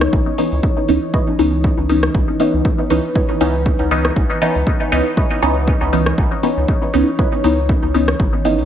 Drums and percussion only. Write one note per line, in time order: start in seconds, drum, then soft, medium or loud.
0.01 cross-stick medium
0.13 kick loud
0.38 open hi-hat medium
0.52 open hi-hat soft
0.63 kick loud
0.88 open hi-hat medium
1.14 kick loud
1.39 open hi-hat medium
1.64 kick loud
1.89 open hi-hat medium
2.03 cross-stick medium
2.15 kick loud
2.40 open hi-hat medium
2.65 kick loud
2.90 open hi-hat medium
3.15 kick loud
3.41 open hi-hat medium
3.66 kick loud
3.91 open hi-hat medium
4.05 cross-stick medium
4.16 kick loud
4.42 open hi-hat medium
4.55 open hi-hat soft
4.67 kick loud
4.92 open hi-hat medium
5.17 kick loud
5.42 open hi-hat medium
5.68 kick loud
5.93 open hi-hat medium
6.06 cross-stick medium
6.18 kick loud
6.43 open hi-hat medium
6.68 kick loud
6.94 open hi-hat medium
7.19 kick loud
7.44 open hi-hat medium
7.69 kick loud
7.94 open hi-hat medium
8.08 cross-stick medium
8.20 kick loud
8.45 open hi-hat medium
8.58 open hi-hat soft